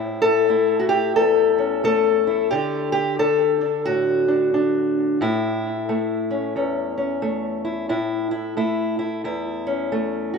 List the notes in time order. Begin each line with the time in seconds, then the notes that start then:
Already playing: A2 E4
0.22 A4
0.49 A3 E4
0.79 F#4
0.89 G4
1.16 E2 A4
1.58 C#4
1.84 A3 A4
2.27 E4
2.51 D3 G4
2.92 G4
3.19 D4 A4
3.61 D4
3.85 A2 F#4
4.28 D4
4.54 D4
5.21 A2 E4
5.89 A3
6.31 C#4
6.56 E2 C#4
6.98 C#4
7.22 A3
7.65 E4
7.89 A2 E4
8.31 E4
8.57 A3 E4
8.99 E4
9.24 E2 E4
9.67 C#4
9.92 A3
10.34 F#4